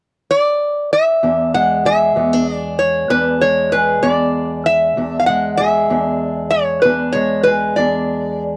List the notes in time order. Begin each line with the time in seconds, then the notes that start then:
0.31 D5
0.93 E5
1.23 E2 D4
1.54 G#3 F#5
1.85 G#4 E5
2.16 E2 B3
2.33 D4
2.54 D5
2.79 C#5
3.10 E2 D4 B4
3.41 G#3 C#5
3.72 G#4 B4
4.03 E2 D4 D5
4.66 E5
4.97 E2 D4
5.19 F5
5.26 G#3 F#5
5.57 G#4 E5
5.90 E2 D4
6.51 C#5
6.82 E2 D4 B4
7.12 G#3 C#5
7.43 G#4 B4
7.76 E2 D4 D5